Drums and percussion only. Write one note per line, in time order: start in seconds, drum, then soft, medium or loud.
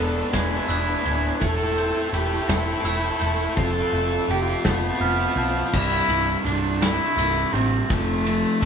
0.34 kick medium
0.34 snare loud
0.34 ride medium
0.70 ride medium
1.06 ride medium
1.42 kick medium
1.42 ride medium
1.78 ride medium
2.14 ride medium
2.49 kick medium
2.49 snare loud
2.49 ride medium
2.85 ride medium
3.21 ride medium
3.57 kick medium
4.65 kick medium
4.65 snare loud
5.73 kick loud
5.73 crash loud
6.09 ride medium
6.46 ride medium
6.82 snare loud
6.82 ride loud
7.19 ride medium
7.55 ride medium
7.90 kick loud
7.90 ride loud
8.27 ride medium